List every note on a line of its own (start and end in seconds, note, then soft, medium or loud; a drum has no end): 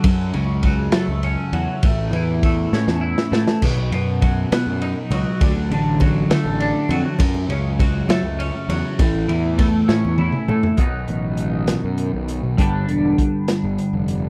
0.00 0.30 F#2 loud
0.00 0.94 A3 medium
0.00 ride loud
0.04 1.54 F#2 medium
0.04 kick loud
0.34 0.87 C#2 loud
0.34 1.83 C#3 medium
0.34 ride medium
0.63 1.52 F#3 medium
0.63 kick medium
0.63 ride medium
0.92 1.07 F#3 loud
0.92 1.83 A3 medium
0.92 snare loud
0.92 ride medium
1.08 1.34 C#2 medium
1.23 1.83 C#4 medium
1.23 ride medium
1.52 1.66 E2 loud
1.52 1.83 F#3 medium
1.52 ride medium
1.83 2.09 A1 loud
1.83 3.32 A2 medium
1.83 kick loud
1.83 ride loud
2.12 2.65 E2 loud
2.12 3.62 E3 medium
2.12 ride medium
2.43 3.31 A3 medium
2.43 kick medium
2.43 ride medium
2.73 2.86 A2 loud
2.73 3.62 C#4 medium
2.73 snare medium
2.87 3.14 E2 medium
2.87 snare medium
3.01 3.61 E4 medium
3.18 snare medium
3.32 3.45 A2 loud
3.32 3.62 A3 medium
3.32 snare loud
3.48 snare medium
3.62 3.88 B1 loud
3.62 3.91 B2 medium
3.62 kick loud
3.62 crash loud
3.62 splash medium
3.62 high conga loud
3.77 low conga medium
3.91 4.44 F#2 loud
3.91 5.41 B2 medium
3.91 ride medium
4.21 5.11 F#3 medium
4.21 kick medium
4.21 ride medium
4.21 low conga medium
4.52 4.65 B2 loud
4.52 5.41 B3 medium
4.52 snare loud
4.52 ride loud
4.52 high conga loud
4.52 low conga soft
4.67 4.93 F#2 medium
4.67 low conga medium
4.81 5.41 D#4 medium
4.81 ride medium
4.81 low conga soft
5.11 5.24 C#2 medium
5.11 6.01 F#3 medium
5.11 ride medium
5.11 low conga loud
5.40 5.67 D2 loud
5.40 5.70 D3 medium
5.40 kick loud
5.40 ride loud
5.40 high conga medium
5.55 low conga medium
5.70 6.23 A1 loud
5.70 7.20 D3 medium
5.70 ride medium
6.00 6.89 F#3 medium
6.00 kick medium
6.00 ride medium
6.00 low conga loud
6.30 6.43 D3 loud
6.30 8.09 A3 medium
6.30 snare loud
6.30 ride medium
6.30 high conga loud
6.30 low conga soft
6.45 6.71 A1 loud
6.45 low conga medium
6.60 7.20 D4 medium
6.60 ride medium
6.89 7.03 F2 loud
6.89 7.20 F#3 medium
6.89 ride medium
6.89 low conga loud
7.19 8.68 F#2 medium
7.19 7.46 F#2 loud
7.19 kick loud
7.19 ride loud
7.19 high conga loud
7.34 low conga medium
7.48 8.01 C#2 medium
7.48 8.99 C#3 medium
7.48 ride medium
7.79 8.68 F#3 medium
7.79 kick medium
7.79 ride medium
7.79 low conga loud
8.09 8.22 F#3 loud
8.09 8.99 A3 medium
8.09 snare loud
8.09 ride loud
8.09 high conga loud
8.09 low conga soft
8.23 8.50 C#2 medium
8.39 8.98 C#4 medium
8.39 ride medium
8.39 low conga soft
8.68 8.82 E2 medium
8.68 8.99 F#3 medium
8.68 ride medium
8.68 low conga loud
8.99 9.25 A1 loud
8.99 10.48 A2 medium
8.99 kick loud
8.99 ride loud
8.99 high conga loud
9.15 low conga medium
9.28 9.81 E2 loud
9.28 10.78 E3 medium
9.28 ride medium
9.45 low conga soft
9.58 10.47 A3 medium
9.58 kick medium
9.58 ride medium
9.58 low conga loud
9.88 10.02 A2 medium
9.88 10.78 C#4 medium
9.88 snare medium
9.88 high conga loud
10.05 10.30 E2 medium
10.05 low conga medium
10.18 10.78 E4 medium
10.18 high tom medium
10.32 mid tom medium
10.32 low conga soft
10.48 10.61 A2 medium
10.48 10.78 A3 medium
10.48 mid tom medium
10.48 low conga medium
10.63 floor tom medium
10.77 11.05 B1 medium
10.77 12.55 B2 medium
10.77 12.56 D#3 medium
10.77 12.56 F#3 medium
10.77 12.60 B3 medium
10.77 12.57 D#4 medium
10.77 kick loud
10.77 closed hi-hat medium
11.08 11.74 A1 medium
11.08 closed hi-hat medium
11.37 closed hi-hat medium
11.67 snare medium
11.67 closed hi-hat medium
11.84 12.10 F#2 medium
11.98 closed hi-hat medium
12.14 12.40 B1 medium
12.28 closed hi-hat medium
12.43 12.56 B1 medium
12.57 12.84 G1 loud
12.57 14.29 G2 medium
12.57 14.29 D3 medium
12.57 14.29 G3 medium
12.57 14.29 B3 medium
12.57 14.29 D4 medium
12.57 kick loud
12.57 closed hi-hat medium
12.88 13.15 E1 medium
12.88 closed hi-hat medium
13.18 kick medium
13.18 closed hi-hat medium
13.48 snare loud
13.48 closed hi-hat medium
13.64 13.76 G1 medium
13.78 closed hi-hat medium
13.93 14.29 F1 medium
14.08 closed hi-hat medium